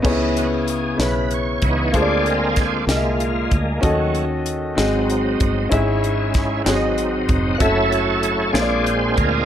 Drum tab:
CC |x-----|------|------|------|
HH |-xxxxx|xxxxxx|xxxxxx|xxxxxx|
SD |---o--|--oo--|---o--|--oo--|
BD |o----o|o-o--o|o----o|o-o--o|

CC |------|
HH |xxxxxx|
SD |---o--|
BD |o----o|